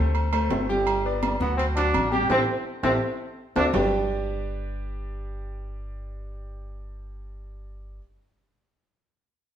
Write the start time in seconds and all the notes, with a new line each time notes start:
Already playing: D2 A3 A4 C5
0.15 high conga, low agogo
0.33 A3 A4 C5, high conga, low agogo
0.50 G1 A3 A4 C5, high conga, low timbale
0.69 G3 G4 G5
0.87 high conga, low agogo
1.05 B3 B4 D5, high conga
1.23 G3, high conga, low agogo
1.40 D2 F#3 B3 F#4 F#5, high conga
1.57 C4, high conga, low agogo
1.76 F#3 D4 F#4 F#5, high conga, low agogo
1.94 A1, high conga, low agogo
2.11 G3 G4 G5, high conga
2.29 A1 C4 E4 G4 A4, high conga, high timbale
2.83 A1 C4 E4 G4 A4, high conga, high timbale
3.56 D2 D4 F#4 A4, high conga, high timbale
3.73 G1 G3 D4 G4 B4 D5 G5, low conga, low timbale